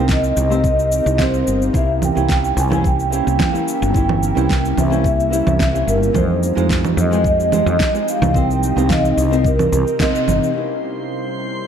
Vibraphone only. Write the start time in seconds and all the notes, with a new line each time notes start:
Already playing: G5
0.12 D#5
0.67 D#5
1.23 C5
1.77 E5
2.04 G5
2.32 G5
2.60 G#5
2.87 G5
3.97 G5
4.79 E5
5.08 E5
5.88 A#4
6.17 C5
6.99 D#5
7.27 D#5
8.09 F5
8.37 G5
8.86 F5
8.93 D#5
9.47 A#4
10.01 D#5